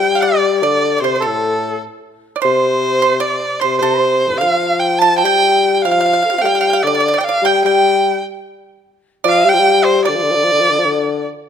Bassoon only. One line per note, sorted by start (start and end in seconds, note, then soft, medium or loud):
0.00 0.64 G3 medium
0.63 1.01 D3 medium
1.01 1.17 C3 medium
1.17 1.28 C3 soft
1.26 1.85 A2 medium
2.45 3.58 C3 medium
3.63 3.80 C3 medium
3.81 4.25 C3 medium
4.26 4.28 F2 soft
4.26 4.30 G2 soft
4.31 4.34 A2 soft
4.35 4.39 C3 medium
4.40 4.43 D3 medium
4.40 5.26 F3 medium
5.24 5.87 G3 loud
5.86 6.24 F3 medium
6.25 6.31 A4 soft
6.31 6.35 F4 soft
6.31 6.33 G4 soft
6.38 6.45 A3 medium
6.38 6.41 C4 medium
6.44 6.83 G3 medium
6.84 7.16 D3 medium
7.42 7.62 G3 medium
7.65 8.21 G3 medium
9.25 9.46 F3 medium
9.45 9.56 G3 loud
9.54 9.61 F3 medium
9.59 10.10 G3 loud
10.09 10.17 D3 medium
10.15 10.24 F3 medium
10.23 10.32 D3 medium
10.31 10.37 F3 medium
10.35 10.45 D3 medium
10.44 10.53 F3 medium
10.52 10.62 D3 medium
10.60 10.71 F3 medium
10.70 10.80 D3 medium
10.78 10.86 F3 medium
10.85 11.29 D3 medium